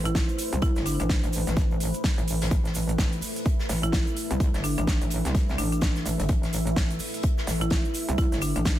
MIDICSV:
0, 0, Header, 1, 5, 480
1, 0, Start_track
1, 0, Key_signature, 0, "minor"
1, 0, Tempo, 472441
1, 633, Time_signature, 4, 2, 24, 8
1, 8932, End_track
2, 0, Start_track
2, 0, Title_t, "Ambient pad"
2, 0, Program_c, 0, 92
2, 0, Note_on_c, 0, 57, 82
2, 0, Note_on_c, 0, 64, 74
2, 0, Note_on_c, 0, 71, 75
2, 0, Note_on_c, 0, 72, 93
2, 2541, Note_off_c, 0, 72, 0
2, 2553, Note_on_c, 0, 76, 89
2, 8932, Note_off_c, 0, 57, 0
2, 8932, Note_off_c, 0, 64, 0
2, 8932, Note_off_c, 0, 71, 0
2, 8932, Note_off_c, 0, 76, 0
2, 8932, End_track
3, 0, Start_track
3, 0, Title_t, "Marimba"
3, 0, Program_c, 1, 12
3, 56, Note_on_c, 1, 64, 92
3, 220, Note_off_c, 1, 64, 0
3, 633, Note_on_c, 1, 64, 93
3, 821, Note_off_c, 1, 64, 0
3, 872, Note_on_c, 1, 62, 90
3, 963, Note_off_c, 1, 62, 0
3, 1015, Note_on_c, 1, 62, 80
3, 1077, Note_off_c, 1, 62, 0
3, 3895, Note_on_c, 1, 64, 93
3, 4059, Note_off_c, 1, 64, 0
3, 4712, Note_on_c, 1, 62, 90
3, 4804, Note_off_c, 1, 62, 0
3, 4856, Note_on_c, 1, 62, 78
3, 4918, Note_off_c, 1, 62, 0
3, 5672, Note_on_c, 1, 62, 91
3, 5764, Note_off_c, 1, 62, 0
3, 5815, Note_on_c, 1, 62, 78
3, 5878, Note_off_c, 1, 62, 0
3, 7735, Note_on_c, 1, 64, 94
3, 7899, Note_off_c, 1, 64, 0
3, 8313, Note_on_c, 1, 64, 95
3, 8501, Note_off_c, 1, 64, 0
3, 8552, Note_on_c, 1, 62, 94
3, 8644, Note_off_c, 1, 62, 0
3, 8696, Note_on_c, 1, 62, 79
3, 8758, Note_off_c, 1, 62, 0
3, 8932, End_track
4, 0, Start_track
4, 0, Title_t, "Wobble bass"
4, 0, Program_c, 2, 39
4, 0, Note_on_c, 2, 33, 99
4, 272, Note_off_c, 2, 33, 0
4, 535, Note_on_c, 2, 36, 98
4, 752, Note_off_c, 2, 36, 0
4, 775, Note_on_c, 2, 31, 98
4, 992, Note_off_c, 2, 31, 0
4, 1015, Note_on_c, 2, 33, 99
4, 1233, Note_off_c, 2, 33, 0
4, 1255, Note_on_c, 2, 33, 101
4, 1473, Note_off_c, 2, 33, 0
4, 1496, Note_on_c, 2, 33, 99
4, 1953, Note_off_c, 2, 33, 0
4, 2215, Note_on_c, 2, 33, 101
4, 2537, Note_off_c, 2, 33, 0
4, 2552, Note_on_c, 2, 33, 99
4, 3017, Note_off_c, 2, 33, 0
4, 3032, Note_on_c, 2, 33, 101
4, 3257, Note_off_c, 2, 33, 0
4, 3753, Note_on_c, 2, 33, 101
4, 4113, Note_off_c, 2, 33, 0
4, 4376, Note_on_c, 2, 36, 99
4, 4593, Note_off_c, 2, 36, 0
4, 4616, Note_on_c, 2, 31, 98
4, 4833, Note_off_c, 2, 31, 0
4, 4855, Note_on_c, 2, 33, 99
4, 5073, Note_off_c, 2, 33, 0
4, 5095, Note_on_c, 2, 33, 97
4, 5313, Note_off_c, 2, 33, 0
4, 5335, Note_on_c, 2, 36, 100
4, 5657, Note_off_c, 2, 36, 0
4, 5672, Note_on_c, 2, 33, 97
4, 6137, Note_off_c, 2, 33, 0
4, 6152, Note_on_c, 2, 33, 98
4, 6272, Note_off_c, 2, 33, 0
4, 6295, Note_on_c, 2, 31, 101
4, 6377, Note_off_c, 2, 31, 0
4, 6392, Note_on_c, 2, 33, 98
4, 6857, Note_off_c, 2, 33, 0
4, 6872, Note_on_c, 2, 33, 100
4, 7097, Note_off_c, 2, 33, 0
4, 7593, Note_on_c, 2, 33, 99
4, 7953, Note_off_c, 2, 33, 0
4, 8215, Note_on_c, 2, 36, 98
4, 8432, Note_off_c, 2, 36, 0
4, 8455, Note_on_c, 2, 31, 100
4, 8672, Note_off_c, 2, 31, 0
4, 8695, Note_on_c, 2, 33, 100
4, 8912, Note_off_c, 2, 33, 0
4, 8932, End_track
5, 0, Start_track
5, 0, Title_t, "Drums"
5, 50, Note_on_c, 9, 82, 39
5, 55, Note_on_c, 9, 42, 67
5, 152, Note_off_c, 9, 82, 0
5, 152, Note_on_c, 9, 36, 127
5, 153, Note_off_c, 9, 42, 0
5, 153, Note_on_c, 9, 42, 85
5, 154, Note_on_c, 9, 38, 108
5, 154, Note_on_c, 9, 82, 55
5, 155, Note_off_c, 9, 38, 0
5, 155, Note_on_c, 9, 38, 122
5, 254, Note_off_c, 9, 36, 0
5, 254, Note_off_c, 9, 42, 0
5, 256, Note_off_c, 9, 82, 0
5, 257, Note_off_c, 9, 38, 0
5, 292, Note_on_c, 9, 82, 28
5, 295, Note_on_c, 9, 42, 36
5, 391, Note_off_c, 9, 42, 0
5, 391, Note_on_c, 9, 42, 75
5, 392, Note_on_c, 9, 46, 117
5, 393, Note_off_c, 9, 82, 0
5, 394, Note_on_c, 9, 82, 87
5, 493, Note_off_c, 9, 42, 0
5, 493, Note_off_c, 9, 46, 0
5, 496, Note_off_c, 9, 82, 0
5, 535, Note_on_c, 9, 42, 65
5, 538, Note_on_c, 9, 82, 43
5, 629, Note_off_c, 9, 42, 0
5, 629, Note_on_c, 9, 42, 86
5, 632, Note_on_c, 9, 36, 125
5, 633, Note_off_c, 9, 82, 0
5, 633, Note_on_c, 9, 82, 49
5, 731, Note_off_c, 9, 42, 0
5, 734, Note_off_c, 9, 36, 0
5, 735, Note_off_c, 9, 82, 0
5, 767, Note_on_c, 9, 82, 26
5, 775, Note_on_c, 9, 38, 47
5, 775, Note_on_c, 9, 42, 52
5, 869, Note_off_c, 9, 42, 0
5, 869, Note_off_c, 9, 82, 0
5, 869, Note_on_c, 9, 42, 72
5, 872, Note_on_c, 9, 46, 108
5, 876, Note_off_c, 9, 38, 0
5, 879, Note_on_c, 9, 82, 97
5, 971, Note_off_c, 9, 42, 0
5, 973, Note_off_c, 9, 46, 0
5, 981, Note_off_c, 9, 82, 0
5, 1015, Note_on_c, 9, 42, 64
5, 1016, Note_on_c, 9, 82, 42
5, 1112, Note_off_c, 9, 42, 0
5, 1112, Note_on_c, 9, 36, 120
5, 1112, Note_on_c, 9, 42, 86
5, 1113, Note_on_c, 9, 38, 113
5, 1114, Note_off_c, 9, 82, 0
5, 1114, Note_on_c, 9, 82, 54
5, 1116, Note_off_c, 9, 38, 0
5, 1116, Note_on_c, 9, 38, 119
5, 1213, Note_off_c, 9, 42, 0
5, 1214, Note_off_c, 9, 36, 0
5, 1215, Note_off_c, 9, 82, 0
5, 1217, Note_off_c, 9, 38, 0
5, 1255, Note_on_c, 9, 42, 50
5, 1257, Note_on_c, 9, 82, 26
5, 1259, Note_off_c, 9, 42, 0
5, 1259, Note_on_c, 9, 42, 45
5, 1350, Note_off_c, 9, 82, 0
5, 1350, Note_on_c, 9, 82, 94
5, 1352, Note_on_c, 9, 46, 108
5, 1358, Note_off_c, 9, 42, 0
5, 1358, Note_on_c, 9, 42, 72
5, 1451, Note_off_c, 9, 82, 0
5, 1454, Note_off_c, 9, 46, 0
5, 1459, Note_off_c, 9, 42, 0
5, 1494, Note_on_c, 9, 82, 37
5, 1496, Note_on_c, 9, 42, 65
5, 1500, Note_on_c, 9, 38, 37
5, 1590, Note_off_c, 9, 82, 0
5, 1590, Note_on_c, 9, 82, 50
5, 1592, Note_on_c, 9, 36, 125
5, 1594, Note_off_c, 9, 42, 0
5, 1594, Note_on_c, 9, 42, 87
5, 1597, Note_off_c, 9, 38, 0
5, 1597, Note_on_c, 9, 38, 36
5, 1691, Note_off_c, 9, 82, 0
5, 1694, Note_off_c, 9, 36, 0
5, 1696, Note_off_c, 9, 42, 0
5, 1698, Note_off_c, 9, 38, 0
5, 1734, Note_on_c, 9, 82, 27
5, 1833, Note_on_c, 9, 46, 107
5, 1834, Note_on_c, 9, 42, 73
5, 1836, Note_off_c, 9, 82, 0
5, 1838, Note_on_c, 9, 82, 94
5, 1934, Note_off_c, 9, 46, 0
5, 1935, Note_off_c, 9, 42, 0
5, 1940, Note_off_c, 9, 82, 0
5, 1967, Note_on_c, 9, 82, 44
5, 1976, Note_on_c, 9, 42, 63
5, 2069, Note_off_c, 9, 82, 0
5, 2071, Note_off_c, 9, 42, 0
5, 2071, Note_on_c, 9, 42, 77
5, 2072, Note_on_c, 9, 36, 121
5, 2072, Note_on_c, 9, 38, 113
5, 2075, Note_on_c, 9, 82, 50
5, 2076, Note_off_c, 9, 38, 0
5, 2076, Note_on_c, 9, 38, 120
5, 2172, Note_off_c, 9, 42, 0
5, 2174, Note_off_c, 9, 36, 0
5, 2177, Note_off_c, 9, 82, 0
5, 2178, Note_off_c, 9, 38, 0
5, 2213, Note_on_c, 9, 42, 43
5, 2215, Note_off_c, 9, 42, 0
5, 2215, Note_on_c, 9, 42, 36
5, 2217, Note_on_c, 9, 82, 25
5, 2313, Note_on_c, 9, 46, 113
5, 2315, Note_off_c, 9, 42, 0
5, 2315, Note_on_c, 9, 42, 61
5, 2317, Note_off_c, 9, 82, 0
5, 2317, Note_on_c, 9, 82, 96
5, 2415, Note_off_c, 9, 46, 0
5, 2417, Note_off_c, 9, 42, 0
5, 2419, Note_off_c, 9, 82, 0
5, 2455, Note_on_c, 9, 82, 42
5, 2456, Note_on_c, 9, 42, 65
5, 2459, Note_on_c, 9, 38, 107
5, 2460, Note_off_c, 9, 42, 0
5, 2460, Note_on_c, 9, 42, 80
5, 2551, Note_off_c, 9, 82, 0
5, 2551, Note_on_c, 9, 82, 55
5, 2552, Note_on_c, 9, 36, 117
5, 2553, Note_off_c, 9, 42, 0
5, 2553, Note_on_c, 9, 42, 90
5, 2560, Note_off_c, 9, 38, 0
5, 2653, Note_off_c, 9, 82, 0
5, 2654, Note_off_c, 9, 36, 0
5, 2655, Note_off_c, 9, 42, 0
5, 2686, Note_on_c, 9, 82, 28
5, 2696, Note_on_c, 9, 42, 52
5, 2701, Note_on_c, 9, 38, 49
5, 2788, Note_off_c, 9, 82, 0
5, 2789, Note_on_c, 9, 82, 99
5, 2794, Note_on_c, 9, 46, 107
5, 2796, Note_off_c, 9, 42, 0
5, 2796, Note_on_c, 9, 42, 68
5, 2802, Note_off_c, 9, 38, 0
5, 2890, Note_off_c, 9, 82, 0
5, 2895, Note_off_c, 9, 46, 0
5, 2897, Note_off_c, 9, 42, 0
5, 2928, Note_on_c, 9, 82, 38
5, 2936, Note_on_c, 9, 42, 64
5, 3030, Note_off_c, 9, 82, 0
5, 3032, Note_on_c, 9, 36, 118
5, 3033, Note_off_c, 9, 42, 0
5, 3033, Note_on_c, 9, 42, 81
5, 3033, Note_on_c, 9, 82, 51
5, 3034, Note_on_c, 9, 38, 124
5, 3037, Note_off_c, 9, 38, 0
5, 3037, Note_on_c, 9, 38, 120
5, 3134, Note_off_c, 9, 36, 0
5, 3135, Note_off_c, 9, 42, 0
5, 3135, Note_off_c, 9, 82, 0
5, 3138, Note_off_c, 9, 38, 0
5, 3172, Note_on_c, 9, 42, 43
5, 3176, Note_off_c, 9, 42, 0
5, 3176, Note_on_c, 9, 42, 52
5, 3179, Note_on_c, 9, 82, 29
5, 3263, Note_on_c, 9, 46, 79
5, 3273, Note_off_c, 9, 46, 0
5, 3273, Note_on_c, 9, 46, 105
5, 3275, Note_off_c, 9, 82, 0
5, 3275, Note_on_c, 9, 82, 89
5, 3278, Note_off_c, 9, 42, 0
5, 3375, Note_off_c, 9, 46, 0
5, 3377, Note_off_c, 9, 82, 0
5, 3412, Note_on_c, 9, 82, 38
5, 3417, Note_on_c, 9, 42, 64
5, 3512, Note_off_c, 9, 82, 0
5, 3512, Note_on_c, 9, 36, 122
5, 3512, Note_on_c, 9, 82, 51
5, 3515, Note_off_c, 9, 42, 0
5, 3515, Note_on_c, 9, 42, 89
5, 3613, Note_off_c, 9, 82, 0
5, 3614, Note_off_c, 9, 36, 0
5, 3617, Note_off_c, 9, 42, 0
5, 3652, Note_on_c, 9, 82, 26
5, 3653, Note_on_c, 9, 38, 62
5, 3748, Note_on_c, 9, 42, 67
5, 3753, Note_on_c, 9, 46, 104
5, 3754, Note_off_c, 9, 38, 0
5, 3754, Note_off_c, 9, 82, 0
5, 3754, Note_on_c, 9, 82, 96
5, 3760, Note_on_c, 9, 38, 41
5, 3850, Note_off_c, 9, 42, 0
5, 3854, Note_off_c, 9, 46, 0
5, 3856, Note_off_c, 9, 82, 0
5, 3862, Note_off_c, 9, 38, 0
5, 3896, Note_on_c, 9, 42, 65
5, 3896, Note_on_c, 9, 82, 36
5, 3986, Note_on_c, 9, 38, 110
5, 3992, Note_off_c, 9, 82, 0
5, 3992, Note_on_c, 9, 36, 121
5, 3992, Note_on_c, 9, 82, 55
5, 3996, Note_off_c, 9, 38, 0
5, 3996, Note_off_c, 9, 42, 0
5, 3996, Note_on_c, 9, 38, 117
5, 3996, Note_on_c, 9, 42, 79
5, 4094, Note_off_c, 9, 36, 0
5, 4094, Note_off_c, 9, 82, 0
5, 4098, Note_off_c, 9, 38, 0
5, 4098, Note_off_c, 9, 42, 0
5, 4136, Note_on_c, 9, 42, 35
5, 4137, Note_on_c, 9, 82, 26
5, 4232, Note_off_c, 9, 42, 0
5, 4232, Note_on_c, 9, 42, 66
5, 4232, Note_on_c, 9, 46, 112
5, 4234, Note_off_c, 9, 82, 0
5, 4234, Note_on_c, 9, 82, 84
5, 4333, Note_off_c, 9, 42, 0
5, 4334, Note_off_c, 9, 46, 0
5, 4335, Note_off_c, 9, 82, 0
5, 4375, Note_on_c, 9, 42, 65
5, 4379, Note_on_c, 9, 82, 42
5, 4472, Note_off_c, 9, 42, 0
5, 4472, Note_on_c, 9, 36, 117
5, 4472, Note_on_c, 9, 42, 91
5, 4479, Note_off_c, 9, 82, 0
5, 4479, Note_on_c, 9, 82, 52
5, 4574, Note_off_c, 9, 36, 0
5, 4574, Note_off_c, 9, 42, 0
5, 4580, Note_off_c, 9, 82, 0
5, 4611, Note_on_c, 9, 38, 49
5, 4613, Note_on_c, 9, 82, 25
5, 4615, Note_on_c, 9, 42, 53
5, 4711, Note_off_c, 9, 42, 0
5, 4711, Note_on_c, 9, 42, 65
5, 4713, Note_off_c, 9, 38, 0
5, 4713, Note_on_c, 9, 46, 103
5, 4715, Note_off_c, 9, 82, 0
5, 4717, Note_on_c, 9, 82, 86
5, 4813, Note_off_c, 9, 42, 0
5, 4814, Note_off_c, 9, 46, 0
5, 4818, Note_off_c, 9, 82, 0
5, 4855, Note_on_c, 9, 42, 66
5, 4859, Note_on_c, 9, 82, 41
5, 4952, Note_off_c, 9, 82, 0
5, 4952, Note_on_c, 9, 36, 112
5, 4952, Note_on_c, 9, 82, 52
5, 4954, Note_off_c, 9, 42, 0
5, 4954, Note_on_c, 9, 38, 121
5, 4954, Note_on_c, 9, 42, 81
5, 4956, Note_off_c, 9, 38, 0
5, 4956, Note_on_c, 9, 38, 117
5, 5054, Note_off_c, 9, 36, 0
5, 5054, Note_off_c, 9, 82, 0
5, 5056, Note_off_c, 9, 42, 0
5, 5058, Note_off_c, 9, 38, 0
5, 5093, Note_on_c, 9, 42, 47
5, 5095, Note_on_c, 9, 82, 28
5, 5096, Note_off_c, 9, 42, 0
5, 5096, Note_on_c, 9, 42, 54
5, 5185, Note_off_c, 9, 42, 0
5, 5185, Note_on_c, 9, 42, 72
5, 5193, Note_off_c, 9, 82, 0
5, 5193, Note_on_c, 9, 46, 101
5, 5193, Note_on_c, 9, 82, 99
5, 5287, Note_off_c, 9, 42, 0
5, 5294, Note_off_c, 9, 46, 0
5, 5295, Note_off_c, 9, 82, 0
5, 5336, Note_on_c, 9, 42, 65
5, 5339, Note_on_c, 9, 38, 39
5, 5341, Note_on_c, 9, 82, 41
5, 5432, Note_off_c, 9, 42, 0
5, 5432, Note_on_c, 9, 36, 116
5, 5432, Note_on_c, 9, 42, 91
5, 5433, Note_off_c, 9, 82, 0
5, 5433, Note_on_c, 9, 82, 47
5, 5437, Note_off_c, 9, 38, 0
5, 5437, Note_on_c, 9, 38, 36
5, 5534, Note_off_c, 9, 36, 0
5, 5534, Note_off_c, 9, 42, 0
5, 5534, Note_off_c, 9, 82, 0
5, 5538, Note_off_c, 9, 38, 0
5, 5575, Note_on_c, 9, 82, 23
5, 5582, Note_on_c, 9, 38, 39
5, 5673, Note_on_c, 9, 42, 72
5, 5673, Note_on_c, 9, 46, 101
5, 5675, Note_off_c, 9, 82, 0
5, 5675, Note_on_c, 9, 82, 87
5, 5684, Note_off_c, 9, 38, 0
5, 5774, Note_off_c, 9, 42, 0
5, 5775, Note_off_c, 9, 46, 0
5, 5777, Note_off_c, 9, 82, 0
5, 5816, Note_on_c, 9, 42, 68
5, 5817, Note_on_c, 9, 82, 39
5, 5907, Note_off_c, 9, 42, 0
5, 5907, Note_on_c, 9, 42, 87
5, 5908, Note_off_c, 9, 82, 0
5, 5908, Note_on_c, 9, 82, 51
5, 5912, Note_on_c, 9, 36, 118
5, 5916, Note_on_c, 9, 38, 117
5, 5919, Note_off_c, 9, 38, 0
5, 5919, Note_on_c, 9, 38, 113
5, 6009, Note_off_c, 9, 42, 0
5, 6009, Note_off_c, 9, 82, 0
5, 6014, Note_off_c, 9, 36, 0
5, 6021, Note_off_c, 9, 38, 0
5, 6050, Note_on_c, 9, 82, 27
5, 6055, Note_on_c, 9, 38, 49
5, 6056, Note_on_c, 9, 42, 38
5, 6152, Note_off_c, 9, 82, 0
5, 6152, Note_on_c, 9, 46, 104
5, 6156, Note_on_c, 9, 82, 88
5, 6157, Note_off_c, 9, 38, 0
5, 6157, Note_off_c, 9, 42, 0
5, 6157, Note_on_c, 9, 42, 63
5, 6254, Note_off_c, 9, 46, 0
5, 6258, Note_off_c, 9, 82, 0
5, 6259, Note_off_c, 9, 42, 0
5, 6293, Note_on_c, 9, 42, 47
5, 6295, Note_off_c, 9, 42, 0
5, 6295, Note_on_c, 9, 42, 68
5, 6300, Note_on_c, 9, 82, 38
5, 6387, Note_off_c, 9, 82, 0
5, 6387, Note_on_c, 9, 82, 52
5, 6388, Note_off_c, 9, 42, 0
5, 6388, Note_on_c, 9, 42, 89
5, 6392, Note_on_c, 9, 36, 115
5, 6488, Note_off_c, 9, 82, 0
5, 6489, Note_off_c, 9, 42, 0
5, 6494, Note_off_c, 9, 36, 0
5, 6535, Note_on_c, 9, 42, 53
5, 6540, Note_on_c, 9, 38, 44
5, 6542, Note_on_c, 9, 82, 25
5, 6632, Note_on_c, 9, 46, 99
5, 6637, Note_off_c, 9, 42, 0
5, 6637, Note_on_c, 9, 42, 67
5, 6639, Note_off_c, 9, 82, 0
5, 6639, Note_on_c, 9, 82, 92
5, 6641, Note_off_c, 9, 38, 0
5, 6734, Note_off_c, 9, 46, 0
5, 6738, Note_off_c, 9, 42, 0
5, 6741, Note_off_c, 9, 82, 0
5, 6771, Note_on_c, 9, 82, 38
5, 6775, Note_on_c, 9, 42, 68
5, 6872, Note_off_c, 9, 42, 0
5, 6872, Note_on_c, 9, 36, 115
5, 6872, Note_on_c, 9, 42, 90
5, 6873, Note_off_c, 9, 82, 0
5, 6873, Note_on_c, 9, 82, 54
5, 6875, Note_on_c, 9, 38, 107
5, 6876, Note_off_c, 9, 38, 0
5, 6876, Note_on_c, 9, 38, 122
5, 6974, Note_off_c, 9, 36, 0
5, 6974, Note_off_c, 9, 42, 0
5, 6974, Note_off_c, 9, 82, 0
5, 6977, Note_off_c, 9, 38, 0
5, 7015, Note_on_c, 9, 42, 43
5, 7016, Note_off_c, 9, 42, 0
5, 7016, Note_on_c, 9, 42, 56
5, 7023, Note_on_c, 9, 82, 27
5, 7105, Note_off_c, 9, 82, 0
5, 7105, Note_on_c, 9, 82, 86
5, 7113, Note_on_c, 9, 46, 105
5, 7114, Note_off_c, 9, 46, 0
5, 7114, Note_on_c, 9, 46, 83
5, 7117, Note_off_c, 9, 42, 0
5, 7207, Note_off_c, 9, 82, 0
5, 7215, Note_off_c, 9, 46, 0
5, 7255, Note_on_c, 9, 42, 69
5, 7261, Note_on_c, 9, 82, 38
5, 7348, Note_off_c, 9, 42, 0
5, 7348, Note_on_c, 9, 42, 96
5, 7352, Note_on_c, 9, 36, 115
5, 7354, Note_off_c, 9, 82, 0
5, 7354, Note_on_c, 9, 82, 51
5, 7450, Note_off_c, 9, 42, 0
5, 7454, Note_off_c, 9, 36, 0
5, 7456, Note_off_c, 9, 82, 0
5, 7494, Note_on_c, 9, 82, 23
5, 7495, Note_on_c, 9, 38, 58
5, 7589, Note_on_c, 9, 42, 67
5, 7593, Note_on_c, 9, 46, 103
5, 7596, Note_off_c, 9, 38, 0
5, 7596, Note_off_c, 9, 82, 0
5, 7597, Note_on_c, 9, 38, 45
5, 7600, Note_on_c, 9, 82, 90
5, 7691, Note_off_c, 9, 42, 0
5, 7694, Note_off_c, 9, 46, 0
5, 7699, Note_off_c, 9, 38, 0
5, 7702, Note_off_c, 9, 82, 0
5, 7734, Note_on_c, 9, 82, 38
5, 7736, Note_on_c, 9, 42, 70
5, 7826, Note_off_c, 9, 42, 0
5, 7826, Note_on_c, 9, 42, 80
5, 7832, Note_on_c, 9, 36, 114
5, 7832, Note_on_c, 9, 38, 127
5, 7834, Note_off_c, 9, 82, 0
5, 7834, Note_on_c, 9, 82, 46
5, 7837, Note_off_c, 9, 38, 0
5, 7837, Note_on_c, 9, 38, 122
5, 7928, Note_off_c, 9, 42, 0
5, 7934, Note_off_c, 9, 36, 0
5, 7935, Note_off_c, 9, 82, 0
5, 7938, Note_off_c, 9, 38, 0
5, 7975, Note_on_c, 9, 42, 39
5, 7976, Note_on_c, 9, 82, 25
5, 8070, Note_off_c, 9, 82, 0
5, 8070, Note_on_c, 9, 82, 82
5, 8071, Note_off_c, 9, 42, 0
5, 8071, Note_on_c, 9, 42, 75
5, 8073, Note_on_c, 9, 46, 108
5, 8172, Note_off_c, 9, 82, 0
5, 8173, Note_off_c, 9, 42, 0
5, 8174, Note_off_c, 9, 46, 0
5, 8214, Note_on_c, 9, 82, 41
5, 8216, Note_on_c, 9, 42, 69
5, 8311, Note_off_c, 9, 82, 0
5, 8311, Note_on_c, 9, 82, 55
5, 8312, Note_off_c, 9, 42, 0
5, 8312, Note_on_c, 9, 36, 117
5, 8312, Note_on_c, 9, 42, 90
5, 8413, Note_off_c, 9, 42, 0
5, 8413, Note_off_c, 9, 82, 0
5, 8414, Note_off_c, 9, 36, 0
5, 8451, Note_on_c, 9, 82, 26
5, 8455, Note_on_c, 9, 38, 48
5, 8456, Note_on_c, 9, 42, 57
5, 8552, Note_off_c, 9, 42, 0
5, 8552, Note_on_c, 9, 42, 70
5, 8553, Note_off_c, 9, 82, 0
5, 8553, Note_on_c, 9, 46, 103
5, 8553, Note_on_c, 9, 82, 98
5, 8557, Note_off_c, 9, 38, 0
5, 8654, Note_off_c, 9, 42, 0
5, 8654, Note_off_c, 9, 46, 0
5, 8655, Note_off_c, 9, 82, 0
5, 8689, Note_on_c, 9, 82, 42
5, 8696, Note_on_c, 9, 42, 70
5, 8790, Note_off_c, 9, 82, 0
5, 8790, Note_on_c, 9, 82, 52
5, 8792, Note_off_c, 9, 42, 0
5, 8792, Note_on_c, 9, 36, 110
5, 8792, Note_on_c, 9, 38, 116
5, 8792, Note_on_c, 9, 42, 88
5, 8797, Note_off_c, 9, 38, 0
5, 8797, Note_on_c, 9, 38, 124
5, 8891, Note_off_c, 9, 82, 0
5, 8894, Note_off_c, 9, 36, 0
5, 8894, Note_off_c, 9, 42, 0
5, 8899, Note_off_c, 9, 38, 0
5, 8932, End_track
0, 0, End_of_file